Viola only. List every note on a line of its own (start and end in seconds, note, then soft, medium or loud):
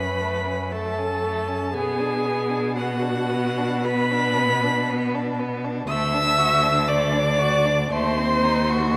0.00 0.73 B4 medium
0.71 1.73 A4 medium
1.73 2.74 G#4 medium
2.77 3.86 F#4 medium
3.84 5.39 B4 medium
5.88 6.90 E5 loud
6.88 7.94 D5 medium
7.92 8.97 C5 medium